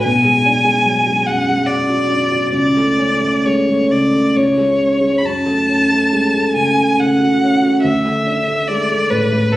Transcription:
0.04 grand piano B1, violin G#5
0.24 grand piano G#3
0.45 grand piano D4
0.64 grand piano G#3
0.85 grand piano F#3
1.07 grand piano G#3
1.26 grand piano F#2, violin F#5
1.49 grand piano G#3
1.66 grand piano F#2, violin D5
1.89 grand piano F#4
2.10 grand piano D4
2.31 grand piano F#4
2.52 grand piano C#2, violin D5
2.77 grand piano A3
2.98 grand piano C#4
3.21 grand piano A3
3.45 grand piano G#3, violin C#5
3.69 grand piano A3
3.91 grand piano C#3, violin D5
4.14 grand piano A3
4.37 grand piano C#2, violin C#5
4.58 grand piano G#3
4.79 grand piano C#4
5.01 grand piano G#3
5.18 violin B5
5.23 grand piano F#2, violin A5
5.46 grand piano A3
5.69 grand piano C#4
5.91 grand piano A3
6.13 grand piano G#3
6.34 grand piano A3
6.55 grand piano C#3, violin G#5
6.78 grand piano A3
6.99 grand piano C#3, violin F#5
7.20 grand piano F#4
7.43 grand piano C#4
7.62 grand piano F#4
7.83 grand piano D2, violin E5
8.06 grand piano A3
8.26 grand piano D4
8.48 grand piano A3
8.67 grand piano G#3, violin D5
8.92 grand piano A3
9.10 grand piano A2, violin B4
9.33 grand piano A3
9.52 grand piano A2, violin A4

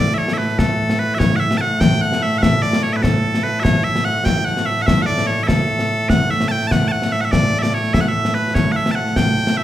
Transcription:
Already playing: bagpipes A2 A3 D5
0.14 bagpipes C#5 E5, snare
0.28 snare
0.33 bagpipes E5
0.38 bagpipes B4
0.48 snare
0.59 bagpipes A4, concert bass drum, snare
0.90 snare
0.99 bagpipes B4
1.15 bagpipes E5
1.19 bagpipes C#5, concert bass drum, snare
1.36 bagpipes E5 F#5
1.51 snare
1.57 bagpipes F#5 A5
1.81 bagpipes G5, concert bass drum, snare
2.01 bagpipes F#5, snare
2.12 snare
2.22 bagpipes E5
2.33 snare
2.38 bagpipes F#5
2.42 bagpipes E5, concert bass drum, snare
2.62 bagpipes D5, snare
2.73 snare
2.83 bagpipes C#5
2.93 bagpipes B4 E5, snare
3.02 bagpipes A4, concert bass drum, snare
3.34 snare
3.43 bagpipes B4
3.60 bagpipes C#5 E5
3.65 concert bass drum, snare
3.84 bagpipes E5
3.96 snare
4.05 bagpipes F#5
4.16 snare
4.25 bagpipes G5, concert bass drum, snare
4.45 bagpipes F#5, snare
4.57 snare
4.66 bagpipes E5
4.78 snare
4.82 bagpipes F#5
4.86 bagpipes E5, concert bass drum, snare
5.02 bagpipes F#5
5.06 bagpipes D5, snare
5.18 snare
5.26 bagpipes C#5
5.38 snare
5.43 bagpipes E5
5.48 bagpipes A4, concert bass drum, snare
5.79 snare
6.09 bagpipes F#5, concert bass drum, snare
6.30 bagpipes E5
6.40 snare
6.48 bagpipes G5 A5
6.61 snare
6.67 bagpipes A5
6.71 bagpipes F#5, concert bass drum, snare
6.88 bagpipes F#5 A5
6.92 snare
7.02 snare
7.12 bagpipes E5
7.21 bagpipes E5 F#5, snare
7.32 bagpipes D5, concert bass drum, snare
7.54 snare
7.59 bagpipes D5 E5
7.64 snare
7.74 bagpipes C#5
7.84 snare
7.94 bagpipes E5, concert bass drum, snare
8.01 bagpipes F#5
8.08 bagpipes E5
8.25 snare
8.34 bagpipes B4
8.55 bagpipes C#5, concert bass drum, snare
8.72 bagpipes F#5, snare
8.76 bagpipes E5
8.86 snare
8.91 bagpipes A5
8.95 bagpipes F#5
9.07 snare
9.16 bagpipes G5, concert bass drum, snare
9.37 snare
9.47 snare
9.57 bagpipes E5

